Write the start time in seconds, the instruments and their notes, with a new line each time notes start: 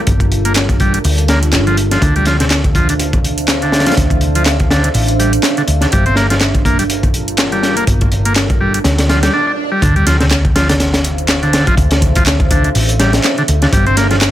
Already playing: ambient pad G3 D4 F4 A4 A#4
0.07 picked electric bass G1, kick, closed hi-hat
0.20 kick, closed hi-hat
0.32 closed hi-hat
0.45 transistor combo organ A#3, closed hi-hat
0.55 snare, clap, closed hi-hat
0.69 kick, closed hi-hat
0.80 transistor combo organ G3, kick, closed hi-hat
0.94 transistor combo organ G3, closed hi-hat
1.04 picked electric bass D2, closed hi-hat, open hi-hat
1.18 closed hi-hat
1.28 transistor combo organ A#3, snare, closed hi-hat
1.43 closed hi-hat
1.53 picked electric bass G1, snare, clap, closed hi-hat
1.67 transistor combo organ F3, closed hi-hat
1.77 closed hi-hat
1.91 transistor combo organ F3, snare, closed hi-hat
2.02 picked electric bass D2, transistor combo organ D3, ambient pad D4 C5 E5 F5, kick, closed hi-hat
2.16 transistor combo organ G3, closed hi-hat
2.25 transistor combo organ F3, snare, closed hi-hat
2.40 transistor combo organ C3, snare, closed hi-hat
2.50 snare, clap, closed hi-hat
2.64 kick, closed hi-hat
2.75 transistor combo organ F3, kick, closed hi-hat
2.89 transistor combo organ D3, closed hi-hat
2.99 closed hi-hat
3.13 kick, closed hi-hat
3.24 closed hi-hat
3.38 closed hi-hat
3.48 snare, clap, closed hi-hat
3.62 transistor combo organ D3, closed hi-hat
3.72 snare, closed hi-hat
3.80 snare, closed hi-hat
3.86 transistor combo organ F3, snare, closed hi-hat
3.92 snare, closed hi-hat
3.97 picked electric bass D2, kick, closed hi-hat
4.10 kick, closed hi-hat
4.21 closed hi-hat
4.35 transistor combo organ F3, closed hi-hat
4.46 snare, clap, closed hi-hat
4.60 kick, closed hi-hat
4.71 transistor combo organ D3, snare, closed hi-hat
4.84 transistor combo organ D3, closed hi-hat
4.94 picked electric bass A1, closed hi-hat, open hi-hat
5.08 closed hi-hat
5.19 transistor combo organ G3, closed hi-hat
5.33 closed hi-hat
5.43 snare, clap, closed hi-hat
5.57 transistor combo organ D3, closed hi-hat
5.68 picked electric bass D2, closed hi-hat
5.81 transistor combo organ D3, snare, closed hi-hat
5.92 picked electric bass G1, transistor combo organ G3, ambient pad G3 F4 A4 A#4, kick, closed hi-hat
6.06 transistor combo organ C4, closed hi-hat
6.16 transistor combo organ A#3, snare, closed hi-hat
6.30 transistor combo organ F3, snare, closed hi-hat
6.41 snare, clap, closed hi-hat
6.55 kick, closed hi-hat
6.65 transistor combo organ A#3, kick, closed hi-hat
6.79 transistor combo organ G3, closed hi-hat
6.90 closed hi-hat
7.03 kick, closed hi-hat
7.14 closed hi-hat
7.28 closed hi-hat
7.38 snare, clap, closed hi-hat
7.52 transistor combo organ G3, closed hi-hat
7.63 snare, closed hi-hat
7.77 transistor combo organ A#3, closed hi-hat
7.87 picked electric bass G1, kick, closed hi-hat
8.01 kick, closed hi-hat
8.12 closed hi-hat
8.25 transistor combo organ A#3, closed hi-hat
8.36 snare, clap, closed hi-hat
8.50 kick, closed hi-hat
8.61 transistor combo organ G3
8.74 transistor combo organ G3, closed hi-hat
8.84 picked electric bass D2, snare, closed hi-hat, swell
8.98 snare, closed hi-hat
9.09 transistor combo organ F3, snare, closed hi-hat
9.23 transistor combo organ G3, snare, closed hi-hat
9.34 transistor combo organ D4
9.47 transistor combo organ D4
9.72 transistor combo organ G3
9.82 picked electric bass D2, transistor combo organ D3, ambient pad D4 A4 C5 E5 F5, kick, closed hi-hat, sub drop
9.96 transistor combo organ G3, closed hi-hat
10.07 transistor combo organ F3, snare, closed hi-hat
10.20 transistor combo organ C3, snare, closed hi-hat
10.31 snare, clap, closed hi-hat
10.45 kick, closed hi-hat
10.56 transistor combo organ F3, snare, closed hi-hat
10.69 transistor combo organ D3, snare, closed hi-hat
10.80 snare, closed hi-hat
10.94 snare, closed hi-hat
11.04 closed hi-hat
11.18 closed hi-hat
11.28 snare, clap, closed hi-hat
11.43 transistor combo organ D3, closed hi-hat
11.53 snare, closed hi-hat
11.67 transistor combo organ F3, kick, closed hi-hat
11.77 picked electric bass D2, kick, closed hi-hat
11.91 snare, closed hi-hat
12.02 kick, closed hi-hat
12.15 transistor combo organ F3, kick, closed hi-hat
12.26 snare, clap, closed hi-hat
12.40 kick, closed hi-hat
12.51 transistor combo organ D3, kick, closed hi-hat
12.64 transistor combo organ D3, closed hi-hat
12.75 picked electric bass A1, closed hi-hat, open hi-hat
12.89 closed hi-hat
12.99 transistor combo organ G3, snare, closed hi-hat
13.13 snare, closed hi-hat
13.24 snare, clap, closed hi-hat
13.38 transistor combo organ D3, closed hi-hat
13.48 picked electric bass D2, closed hi-hat
13.62 transistor combo organ D3, snare, closed hi-hat
13.72 picked electric bass G1, transistor combo organ G3, ambient pad G3 F4 A4 A#4, kick, closed hi-hat
13.87 transistor combo organ C4, closed hi-hat
13.97 transistor combo organ A#3, snare, closed hi-hat
14.11 transistor combo organ F3, snare, closed hi-hat
14.21 snare, clap, closed hi-hat